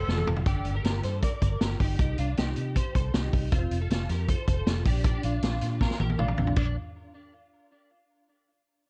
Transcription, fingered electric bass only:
0.08 0.24 F1 loud
0.27 0.43 F1 loud
0.46 0.62 G1 medium
0.65 0.81 G1 loud
0.84 1.00 G1 loud
1.04 1.27 G2 medium
1.42 1.57 G1 loud
1.61 1.76 G1 loud
1.80 1.96 G1 loud
1.99 2.15 C2 medium
2.19 2.34 C2 loud
2.38 2.53 C2 medium
2.57 2.80 C3 medium
2.95 3.10 C2 loud
3.14 3.29 C2 medium
3.33 3.49 C2 medium
3.52 3.68 F1 loud
3.71 3.87 F1 medium
3.90 4.06 F1 medium
4.09 4.33 F2 loud
4.48 4.63 F1 loud
4.66 4.82 F1 loud
4.85 5.17 A#1 loud
5.24 5.39 A#1 loud
5.43 5.58 A#1 medium
5.62 5.85 A#2 loud
6.00 6.15 A#1 loud
6.19 6.35 A#1 medium
6.39 6.54 A#1 medium
6.57 6.75 A#1 medium

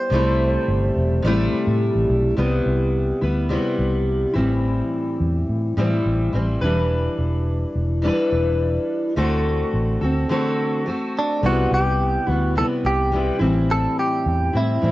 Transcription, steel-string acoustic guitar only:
0.00 0.12 G3 soft
0.00 0.12 B3 soft
0.00 0.15 E4 soft
0.10 1.21 C3 medium
0.10 1.24 G3 medium
0.10 1.25 A3 medium
0.15 1.27 E4 medium
1.22 2.35 C3 medium
1.22 2.37 G3 medium
1.22 2.38 A3 medium
1.27 2.38 E4 loud
2.37 3.22 C3 medium
2.37 3.24 G3 medium
2.37 3.22 B3 medium
2.37 3.21 E4 medium
3.21 3.49 G3 soft
3.21 3.50 B3 soft
3.21 3.50 E4 soft
3.49 4.35 C3 medium
3.49 4.36 G3 medium
3.49 4.35 B3 medium
3.49 4.33 E4 medium
4.33 5.78 G3 medium
4.33 5.77 C4 medium
4.33 5.79 E4 medium
4.38 5.76 A2 medium
4.38 5.77 E3 medium
5.77 6.34 A2 medium
5.77 6.32 E3 medium
5.77 6.34 G3 medium
5.77 6.34 C4 medium
5.77 6.36 E4 medium
6.33 6.62 E3 medium
6.33 6.62 G3 medium
6.33 6.63 C4 medium
6.33 6.62 E4 medium
6.61 8.02 G3 medium
6.61 8.04 D4 medium
6.61 8.04 E4 medium
6.61 8.03 B4 medium
6.66 8.01 E3 medium
8.02 9.16 E3 medium
8.02 9.16 G3 medium
8.02 9.17 D4 medium
8.02 9.17 E4 medium
8.07 9.18 B4 medium
9.16 10.01 D3 medium
9.16 10.02 A3 medium
9.16 10.04 C4 medium
9.16 10.02 F#4 medium
9.16 10.00 A4 medium
10.01 10.29 C4 soft
10.01 10.30 F#4 soft
10.01 10.30 A4 medium
10.29 10.86 D3 medium
10.29 10.85 A3 medium
10.29 10.87 C4 medium
10.29 10.87 F#4 medium
10.29 10.88 A4 medium
10.86 11.43 A3 medium
10.86 11.44 C4 medium
10.86 11.44 F#4 medium
10.86 11.45 A4 medium
11.43 12.28 C3 medium
11.43 12.30 G3 medium
11.43 12.27 B3 medium
11.43 12.26 E4 medium
12.27 12.56 G3 soft
12.27 12.57 B3 soft
12.27 12.56 E4 soft
12.55 13.11 C3 medium
12.55 13.13 G3 medium
12.55 13.13 B3 medium
12.55 13.15 E4 medium
13.12 13.41 C3 medium
13.12 13.41 G3 medium
13.12 13.40 B3 medium
13.12 13.38 E4 medium
13.39 14.81 E3 medium
13.39 14.56 G3 medium
13.39 14.54 C4 medium
13.39 14.53 E4 medium
13.45 14.56 A2 medium
14.53 14.82 G3 soft
14.53 14.83 C4 soft
14.53 14.82 E4 soft
14.81 14.92 E3 medium
14.81 14.92 G3 medium
14.81 14.92 C4 medium
14.81 14.92 E4 medium

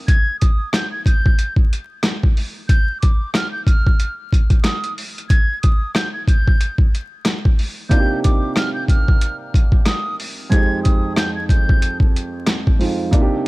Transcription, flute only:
0.08 0.37 G#6 loud
0.40 0.70 D#6 medium
0.74 0.90 G6 medium
0.92 1.04 G#6 medium
1.06 1.54 G6 medium
2.68 2.98 G6 loud
3.01 3.30 D6 medium
3.34 3.51 F6 medium
3.52 3.65 G6 medium
3.66 4.14 F6 medium
4.63 4.93 D#6 medium
5.30 5.59 G#6 loud
5.62 5.92 D#6 medium
5.95 6.12 G6 medium
6.13 6.26 G#6 medium
6.28 6.76 G6 medium
7.90 8.20 G6 loud
8.24 8.53 D6 medium
8.56 8.72 F6 medium
8.74 8.87 G6 medium
8.89 9.37 F6 medium
9.87 10.16 D#6 medium
10.51 10.81 G#6 loud
10.83 11.13 D#6 medium
11.17 11.34 G6 medium
11.35 11.48 G#6 medium
11.49 11.97 G6 medium

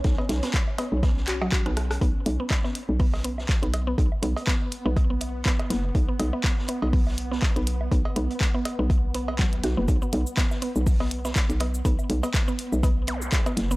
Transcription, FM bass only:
0.05 0.16 B1 medium
0.29 0.41 B1 loud
0.92 1.49 B1 medium
1.66 1.99 B1 medium
2.01 2.13 B1 medium
2.26 2.37 B1 loud
2.89 3.46 B1 medium
3.62 3.95 B1 medium
3.98 4.10 B1 loud
4.23 4.34 B1 loud
4.86 5.43 B1 medium
5.70 5.91 F#1 medium
5.95 6.06 B1 loud
6.20 6.31 B1 loud
6.82 7.40 B1 medium
7.56 7.89 B1 medium
7.91 8.03 B1 medium
8.16 8.28 B1 loud
8.79 9.54 B1 medium
9.53 9.62 D2 medium
9.64 9.75 B1 medium
9.77 9.87 F#1 medium
9.88 10.00 B1 loud
10.13 10.24 B1 loud
10.76 11.33 B1 medium
11.50 11.82 B1 medium
11.85 11.96 B1 loud
12.10 12.21 B1 loud
12.72 13.30 B1 medium
13.57 13.77 F#1 loud

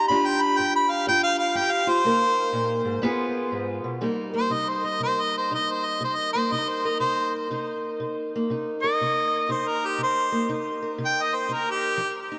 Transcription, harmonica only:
0.08 0.28 B5 medium
0.26 0.43 G5 medium
0.42 0.60 B5 medium
0.58 0.73 G5 medium
0.76 0.92 B5 medium
0.91 1.06 F5 medium
1.09 1.23 G5 loud
1.23 1.38 F5 loud
1.39 1.58 F5 medium
1.57 1.73 G5 medium
1.71 1.91 F5 medium
1.89 2.84 C5 loud
4.36 4.54 C5 medium
4.53 4.70 D#5 medium
4.69 4.87 C5 medium
4.86 5.01 D#5 medium
5.03 5.22 C5 medium
5.21 5.35 D#5 medium
5.38 5.52 C5 medium
5.55 5.73 D#5 medium
5.71 5.87 C5 medium
5.85 6.01 D#5 medium
6.04 6.17 C5 medium
6.16 6.32 D#5 medium
6.33 6.54 C5 medium
6.52 6.70 D#5 medium
6.69 6.88 C5 medium
6.86 6.99 D#5 medium
7.00 7.32 C5 loud
8.83 9.53 D#5 loud
9.51 9.69 C5 medium
9.68 9.88 A#4 medium
9.86 10.01 G4 medium
10.03 10.50 C5 medium
11.05 11.24 G5 medium
11.22 11.37 D#5 medium
11.35 11.54 C5 medium
11.53 11.72 A#4 medium
11.71 12.16 G4 medium

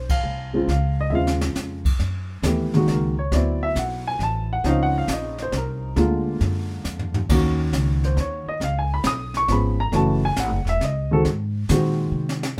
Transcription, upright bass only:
0.00 0.22 B1 medium
0.24 0.66 C2 medium
0.67 1.10 C#2 medium
1.10 1.54 D#2 medium
1.55 1.98 F2 medium
1.99 2.42 F#2 medium
2.42 2.86 D#2 medium
2.87 3.30 C#2 medium
3.31 3.75 D2 medium
3.75 4.19 B1 medium
4.19 4.63 A1 medium
4.64 5.07 C#2 medium
5.08 5.51 A#1 medium
5.52 5.95 C2 medium
5.96 6.39 D2 medium
6.40 6.83 F#2 medium
6.84 7.27 F2 medium
7.29 7.72 D#2 medium
7.72 8.16 C#2 medium
8.17 8.45 D#2 medium
8.46 muted upright bass stroke soft
8.60 9.04 C#2 medium
9.04 9.48 B1 medium
9.48 9.91 G#1 medium
9.92 10.36 F#1 medium
10.37 10.51 A1 medium
10.51 10.64 F#1 medium
10.65 10.80 E1 medium
10.80 11.24 C#2 medium
11.25 11.68 G#2 medium
11.69 12.11 A#2 medium
12.11 12.56 C3 medium

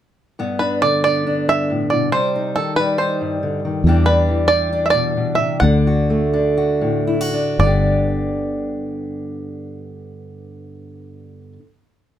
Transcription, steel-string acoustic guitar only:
0.39 1.47 G2 medium
0.39 1.04 B3 soft
0.60 1.25 D4 soft
0.82 2.12 D3 soft
1.06 2.10 B3 soft
1.27 2.10 D4 soft
1.48 2.10 G2 soft
1.70 1.91 A2 soft
1.93 2.12 B2 soft
2.13 2.55 C3 medium
2.13 2.79 G3 soft
2.36 2.99 D#4 soft
2.56 3.42 D#3 soft
2.79 3.86 G3 soft
3.01 3.83 D#4 soft
3.21 3.82 G2 soft
3.43 3.63 D3 soft
3.65 3.85 D#3 soft
3.86 5.62 E2 medium
3.86 4.27 E3 soft
3.86 4.49 G3 soft
3.86 4.07 D4 soft
3.86 5.61 G4 soft
4.08 4.72 D4 soft
4.29 5.59 E3 soft
4.50 5.62 G3 soft
4.73 5.63 D4 soft
4.94 5.16 B2 soft
5.17 5.39 B2 soft
5.40 5.62 C3 soft
5.62 7.60 D3 medium
5.62 6.32 D4 soft
5.87 6.56 F#4 soft
6.10 7.57 A3 soft
6.34 7.32 D4 soft
6.57 7.07 F#4 medium
6.81 7.59 A2 soft
7.07 7.21 E4 soft
7.21 7.60 F#4 soft
7.33 7.56 D4 soft
7.59 11.56 G2 soft
7.59 11.58 D3 soft
7.59 11.60 B3 soft
7.65 11.62 D4 soft
7.65 11.64 G4 soft

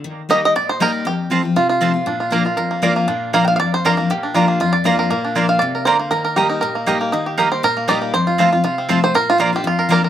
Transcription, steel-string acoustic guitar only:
0.04 0.53 D#3 medium
0.29 0.54 G3 medium
0.29 0.54 A#3 medium
0.29 0.54 D#4 medium
0.29 0.55 G4 medium
0.56 1.04 A#2 medium
0.80 1.05 G3 loud
0.80 1.05 A#3 loud
0.80 1.05 D#4 medium
0.80 1.06 G4 loud
1.05 1.54 F2 medium
1.30 1.44 F3 medium
1.30 1.44 A3 medium
1.30 1.44 C4 medium
1.30 1.42 F4 loud
1.43 1.56 C4 soft
1.43 1.55 F4 medium
1.56 2.05 C3 medium
1.81 1.94 F3 medium
1.81 1.95 A3 medium
1.81 1.94 C4 medium
1.81 1.92 F4 loud
1.94 2.07 C4 soft
1.94 2.06 F4 medium
2.06 2.55 A#2 medium
2.30 2.44 F3 medium
2.30 2.45 A#3 medium
2.30 2.45 D4 medium
2.30 2.44 F4 medium
2.45 2.57 D4 medium
2.45 2.57 F4 soft
2.57 3.06 F2 medium
2.82 3.06 F3 medium
2.82 3.07 A#3 loud
2.82 3.07 D4 loud
2.82 3.08 F4 loud
3.08 3.56 A#2 loud
3.33 3.58 F3 medium
3.33 3.58 A#3 medium
3.33 3.58 D4 medium
3.33 3.59 F4 loud
3.59 4.07 F2 medium
3.85 3.98 F3 medium
3.85 3.98 A#3 loud
3.85 3.98 D4 loud
3.85 3.97 F4 loud
3.98 4.10 D4 medium
3.98 4.09 F4 medium
4.10 4.58 A#2 medium
4.34 4.59 F3 medium
4.34 4.59 A#3 medium
4.34 4.60 D4 medium
4.34 4.60 F4 loud
4.60 5.08 F2 medium
4.84 5.09 F3 medium
4.84 5.09 A#3 medium
4.84 5.10 D4 loud
4.84 5.10 F4 loud
5.11 5.59 A#2 medium
5.35 5.60 F3 medium
5.35 5.60 A#3 medium
5.35 5.60 D4 medium
5.35 5.61 F4 medium
5.62 5.85 C3 medium
5.87 6.11 D3 loud
6.11 6.60 D#3 medium
6.36 6.61 G3 medium
6.36 6.61 A#3 medium
6.36 6.61 D#4 medium
6.36 6.62 G4 medium
6.63 7.10 A#2 medium
6.86 7.11 G3 medium
6.86 7.11 A#3 medium
6.86 7.12 D#4 loud
6.86 7.12 G4 loud
7.13 7.61 D#3 medium
7.38 7.62 G3 medium
7.38 7.62 A#3 medium
7.38 7.63 D#4 loud
7.38 7.63 G4 medium
7.63 8.11 A#2 medium
7.88 8.12 G3 loud
7.88 8.13 A#3 medium
7.88 8.13 D#4 loud
7.88 8.14 G4 loud
8.14 8.62 F2 loud
8.38 8.52 F3 medium
8.38 8.52 A3 medium
8.38 8.53 C4 medium
8.38 8.52 F4 medium
8.53 8.65 C4 soft
8.53 8.64 F4 medium
8.64 9.12 C3 medium
8.89 9.13 F3 medium
8.89 9.14 A3 medium
8.89 9.14 C4 loud
8.89 9.14 F4 loud
9.15 9.63 A#2 loud
9.38 9.52 F3 medium
9.38 9.53 A#3 medium
9.38 9.53 D4 loud
9.38 9.51 F4 medium
9.53 9.65 D4 medium
9.53 9.64 F4 medium
9.64 10.09 F2 medium
9.89 10.09 F3 loud
9.89 10.09 A#3 loud
9.89 10.09 D4 loud
9.89 10.09 F4 loud

